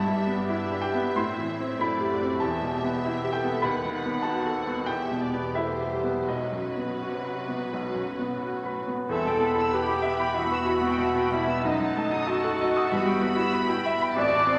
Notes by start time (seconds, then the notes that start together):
Already playing: G2 E4 G4 E5 A5
0.07 G3
0.18 D4
0.27 B3
0.49 E4 E5
0.71 G4
0.81 G5
0.94 B3
1.16 A2 C4 E4 C6
1.38 E3
1.60 C4
1.78 F#2 A3 E4 D5 B5
2.01 G4
2.09 F#4
2.22 C4
2.40 E2 B3 G4 E5 A5
2.63 B2
2.73 C4
2.84 B3
3.02 G4
3.06 E4
3.24 G4
3.32 A4 G5
3.44 B3
3.62 D#2 B3 B4 F#5 B5
3.85 D#3
3.95 F#5
4.05 B3
4.22 B3 F#4 A5
4.27 F#4
4.46 A4
4.55 C4
4.67 B3
4.86 E2 B3 G4 E5 G5
5.11 B2
5.21 D5
5.34 B3
5.54 A3 E4 C5 E5
5.81 G4
5.90 G3
6.04 B3
6.27 B1 B2 F#3 F#4 B4 D#5
6.52 F#2
6.77 B3
7.00 C3 F#4
7.24 B4
7.48 B3
7.71 B1 B2
7.94 F#2
8.19 B3
8.41 A2 F#4
8.65 B4
8.87 B3
9.09 E2 G2 E3 B3 C4 E4 A4 E5 A5 B5
9.24 B2 G5
9.40 B3 B5
9.55 E4
9.59 E6
9.73 B3 G4 B4 G5 B5
9.86 E4
9.91 G5
10.02 E5
10.19 G5 B5
10.34 G2 E3 B3 E4 F#4 E5 F#5 B5
10.39 A3
10.51 B4 E6
10.66 E4 B5
10.81 B3
10.86 G5
10.98 B2 E5
11.15 B3 G5
11.30 B2 G3 E4 E5 B5
11.47 B3 E6
11.62 F#1 F#2 F#3 A3 D#4 D#5 A5
11.80 F#3 F#5
11.96 A3 A5
12.12 D#4 D#6
12.27 A3 F#4 D#5 F#5 A5
12.43 A4 F#5
12.59 D#5
12.73 F#5 D#6
12.87 G1 B3 E4 E5
12.92 G2 E3 B5
13.04 G3 G5
13.21 B3 B5
13.36 E4 E6
13.53 B4 B5
13.68 E4 G5
13.85 E5
14.01 G5 B5
14.15 A1 A2 E3 C4 E4 F#4 D5 E5 A5 D6
14.30 E2 A5
14.47 C4 C6